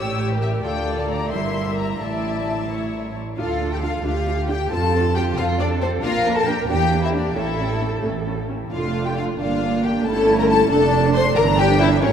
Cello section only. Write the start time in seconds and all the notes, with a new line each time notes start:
Already playing: A2
0.64 D2
1.33 G2
2.01 A2
3.38 A4
4.05 G4
4.71 F4
5.37 A4
6.04 A#4
6.70 G4
7.36 A4
8.71 F4
9.39 D4
10.05 E4
10.70 D4
12.02 E4